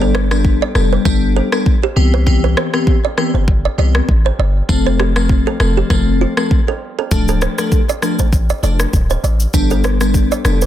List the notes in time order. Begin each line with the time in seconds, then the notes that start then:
Already playing: G1 G3 B3 D4 A4
0.02 A4
0.15 B4, cross-stick
0.31 G3 B3 D4 A4, cross-stick
0.45 kick
0.62 D5
0.75 F1 G3 B3 D4 A4, cross-stick
0.93 B4
1.05 G1 G3 B3 D4 A4, kick
1.36 A4
1.52 G3 B3 D4 A4, cross-stick
1.66 kick
1.83 G4
1.96 C2 E3 B3 C4 G4
2.14 B4
2.26 E3 B3 C4 G4, kick
2.44 B4
2.57 C5, cross-stick
2.73 E3 B3 C4 G4, cross-stick
2.87 kick
3.05 D5
3.17 E3 B3 C4 G4, cross-stick
3.34 G1 C5
3.48 kick
3.65 D5
3.78 C2 E3 B3 C4 G4 D5
3.95 cross-stick
4.09 A1, kick
4.26 C5
4.39 G1 D5
4.69 F1 F3 A3 C4 A4, kick
4.87 C5
5.00 G4, cross-stick
5.16 F3 A3 C4 A4, cross-stick
5.29 kick
5.47 A4
5.60 F1 F3 A3 C4 A4, cross-stick
5.77 G4
5.90 F1 F3 A3 C4 A4, kick, cross-stick
6.21 F4
6.37 F3 A3 C4 A4, cross-stick
6.51 kick
6.68 A4
6.99 A4
7.11 D1 F3 A3 D4 A4, kick, shaker
7.28 A4, shaker
7.41 C5, cross-stick, shaker
7.58 F3 A3 D4 A4, cross-stick, shaker
7.72 kick, shaker
7.89 D5, shaker
8.02 F3 A3 D4 A4, cross-stick, shaker
8.19 A1 C5, shaker
8.33 kick, shaker
8.50 D5, shaker
8.63 F1 F3 A3 D4 A4 D5, shaker
8.80 cross-stick, shaker
8.93 D1, kick, shaker
9.10 C5, shaker
9.24 A1 D5, shaker
9.40 shaker
9.54 G1 G3 B3 D4 A4, kick, shaker
9.70 A4, shaker
9.84 B4, cross-stick, shaker
10.01 G3 B3 D4 A4, cross-stick, shaker
10.14 kick, shaker
10.32 D5, shaker
10.44 F1 G3 B3 D4 A4, cross-stick, shaker
10.62 B4, shaker